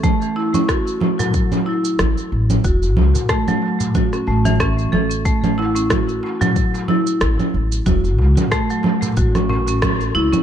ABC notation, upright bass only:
X:1
M:4/4
L:1/8
Q:"Swing 16ths" 1/4=92
K:F#m
V:1 name="Upright bass" clef=bass
z6 A,,, A,,, | E,,, C,, z3 A,,,2 A,,,- | A,,,3 z3 A,,, A,,, | E,,, C,, z2 A,,,3 C,, |]